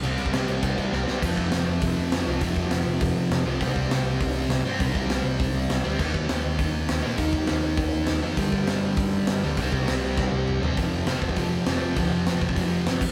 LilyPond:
<<
  \new Staff \with { instrumentName = "Distorted electric guitar" } { \clef bass \time 4/4 \key c \mixolydian \tempo 4 = 201 <c g c'>4 <c g c'>4 <c g c'>4 <c g c'>4 | \key c \major <f, c f>2.~ <f, c f>8 <f, c f>8 | <f, c f>2.~ <f, c f>8 <f, c f>8 | <c g c'>2.~ <c g c'>8 <c g c'>8 |
<c g c'>2.~ <c g c'>8 <c g c'>8 | <ees bes ees'>2.~ <ees bes ees'>8 <ees bes ees'>8 | <ees bes ees'>2.~ <ees bes ees'>8 <ees bes ees'>8 | <g, d g>2.~ <g, d g>8 <g, d g>8 |
<c g c'>2.~ <c g c'>8 <c g c'>8 | \key c \mixolydian <f, c f>4 <f, c f>4 <f, c f>4 <f, c f>4 | <f, c f>4 <f, c f>4 <f, c f>4 <f, c f>8 r8 | }
  \new Staff \with { instrumentName = "Picked electric bass" } { \clef bass \time 4/4 \key c \mixolydian c,8 c,8 c,8 c,8 c,8 c8 c,8 c,8 | \key c \major f,,8 f,,8 f,,8 f,,8 f,,8 f,,8 f,,8 c,8 | f,,8 f,,8 f,,8 f,,8 f,,8 f,,8 f,,8 c,8 | c,8 c,8 c,8 c,8 c,8 c,8 c,8 g,8 |
c,8 c,8 c,8 c,8 c,8 c,8 c,8 d,8 | ees,8 ees,8 ees,8 ees,8 ees,8 ees,8 ees,8 bes,8 | ees,8 ees,8 ees,8 ees,8 ees,8 ees,8 ees,8 f,8 | g,,8 g,,8 g,,8 g,,8 g,,8 g,,8 g,,8 d,8 |
c,8 c,8 c,8 c,8 c,8 c,8 c,8 g,8 | \key c \mixolydian f,,8 f,,8 f,,8 f,,8 f,,4 f,,8 f,,8 | d,8 f,,8 f,,8 f,,8 f,,4 g,,8 aes,,8 | }
  \new DrumStaff \with { instrumentName = "Drums" } \drummode { \time 4/4 cymc8 cymc16 bd16 <cymc sn>8 cymc8 <cymc bd>8 <cymc bd>8 sn8 sn8 | <cymc bd>8 bd8 <hho sn>4 <hho bd>4 <hho sn>4 | <hho bd>8 bd8 <hho sn>4 <hho bd>4 <hho sn>4 | <hho bd>8 bd8 <hho sn>4 <hho bd>4 <hho sn>4 |
<hho bd>8 bd8 <hho sn>4 <hho bd>4 <hho sn>4 | <cymc bd>8 bd8 <hho sn>4 <hho bd>4 <hho sn>4 | <hho bd>8 bd8 <hho sn>4 <hho bd>4 <hho sn>4 | <hho bd>8 bd8 <hho sn>4 <hho bd>4 <hho sn>4 |
<hho bd>8 bd8 <hho sn>4 <bd sn>4 toml8 tomfh8 | <hho bd>4 <hho sn>8 bd16 bd16 <hho bd>4 <hho sn>4 | <hho bd>4 <hho sn>8 bd16 bd16 <hho bd>4 <hho sn>8 <cymc bd>8 | }
>>